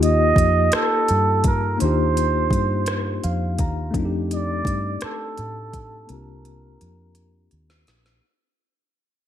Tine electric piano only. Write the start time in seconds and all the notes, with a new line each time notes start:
Already playing: A#3 D#4 F4 G4
1.77 A#3 D4 D#4
1.83 F4 G4
3.24 F5
3.60 A#5
3.91 A3 C4
3.95 D4 D#4 F4
4.05 G4
6.07 A#3 C4 D4
6.12 F4 G4